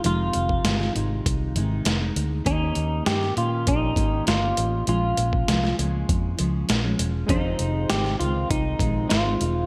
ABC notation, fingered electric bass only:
X:1
M:4/4
L:1/8
Q:1/4=99
K:Fm
V:1 name="Fingered electric bass" clef=bass
F,,, F,,, G,,, A,,, C,, A,,, F,,, =D,, | E,, E,, G,, B,, B,,, A,,, G,,, =A,,, | B,,, B,,, C,, D,, F,, D,, B,,, =E,,, | F,,, F,,, A,,, D,, C,, B,,, A,,, =E,,, |]